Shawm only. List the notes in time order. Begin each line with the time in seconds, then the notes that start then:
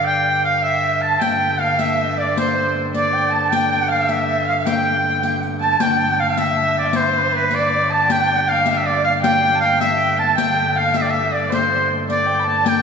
0.06 G5
0.45 F5
0.64 E5
1.02 A5
1.22 G5
1.60 F5
1.79 E5
2.20 D5
2.39 C5
2.96 D5
3.34 A5
3.54 G5
3.71 G5
3.92 F5
4.11 E5
4.48 F5
4.67 G5
5.62 A5
5.81 G5
6.20 F5
6.30 F5
6.38 E5
6.78 D5
6.96 C5
7.36 B4
7.55 D5
7.92 A5
8.12 G5
8.49 F5
8.69 F5
8.77 E5
8.86 D5
9.04 F5
9.24 G5
9.60 F5
9.81 E5
10.19 A5
10.37 G5
10.77 F5
10.96 E5
11.02 D5
11.11 E5
11.34 D5
11.53 C5
12.11 D5
12.48 A5
12.69 G5